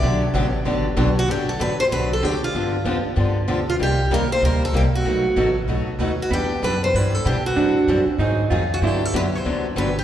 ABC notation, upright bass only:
X:1
M:4/4
L:1/8
Q:"Swing" 1/4=191
K:G
V:1 name="Upright bass" clef=bass
B,,,2 A,,,2 G,,,2 B,,,2 | G,,,2 A,,,2 B,,,2 D,,2 | G,,2 =F,, z G,,2 D,,2 | C,,2 _E,,2 D,,2 C,, z |
B,,,2 A,,,2 B,,, z ^D,,2 | E,,2 F,,2 G,,2 B,,2 | A,,2 F,, z _A,,2 =F,,2 | G,,2 F,,2 D,,2 G,,,2 |]